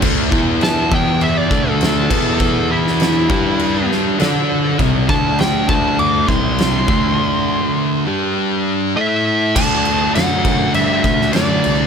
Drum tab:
CC |x---x---x---x-x-|x---x---x---x---|x---x---x---x---|----------------|
SD |----o-------o---|---oo-----o-o---|----o-------o---|----------------|
BD |o-o---o---o---o-|o-----o---------|o-o---o---o---o-|----------------|

CC |x-x-x-x-x-x-x-x-|
SD |----o------oo---|
BD |o-----o---o-----|